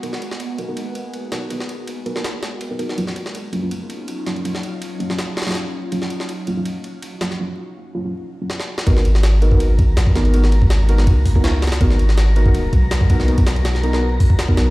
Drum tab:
RD |x---x---x---x---x---x---x---x---|x---x---x---x---x---x---x---x---|x---x---x---x---x---x---x---x-x-|x---x---x---x---x---xxxxx-------|
HH |--------------------------------|--------------------------------|--------------------------------|--------------------------------|
SD |--o---o---------------------o---|--o-----------o-o---o---------o-|--o---o---------------------o---|--o-----------o-o---ooooo-------|
BD |--------------------------------|--------------------------------|--------------------------------|--------------------------------|

RD |x---x---x---x---x---x---x---x---|--------------------------------|x---x---x---x---x---x---x---x-x-|x---x---x---x---x-------x---xxx-|
HH |--------------------------------|--------------------------------|--------------------------------|--------------------o-----------|
SD |--o---o---------------------o-o-|------------------------o-o---o-|--o---o-o---------------o---o---|--o-----o-----o---------o---ooo-|
BD |--------------------------------|--------------------------------|o-------------o-----o-----o-----|------o---------o---o-o---------|

RD |x---x---x---x---x---x---x---x---|x-x-x-x-x---x-----------x---x---|
HH |--------------------------------|--------------------o-----------|
SD |--o---o-o---------------o-----o-|----o---o-o---o---------o---o---|
BD |o-------------o-----o-----o-o---|--o-----------------o-o---o-----|